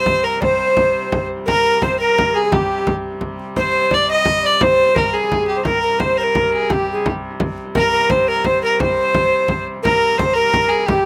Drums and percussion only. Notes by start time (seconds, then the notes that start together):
0.06 frame drum
0.42 frame drum
0.59 frame drum
0.77 frame drum
0.95 frame drum
1.12 frame drum
1.48 frame drum
1.82 frame drum
2.18 frame drum
2.35 frame drum
2.52 frame drum
2.87 frame drum
3.21 frame drum
3.39 frame drum
3.56 frame drum
3.91 frame drum
4.25 frame drum
4.45 frame drum
4.61 frame drum
4.96 frame drum
5.14 frame drum
5.32 frame drum
5.65 frame drum
6.00 frame drum
6.35 frame drum
6.54 frame drum
6.70 frame drum
7.06 frame drum
7.40 frame drum
7.57 frame drum
7.75 frame drum
8.10 frame drum
8.44 frame drum
8.63 frame drum
8.80 frame drum
8.97 frame drum
9.14 frame drum
9.33 frame drum
9.48 frame drum
9.67 frame drum
9.85 frame drum
10.19 frame drum
10.53 frame drum
10.71 frame drum
10.88 frame drum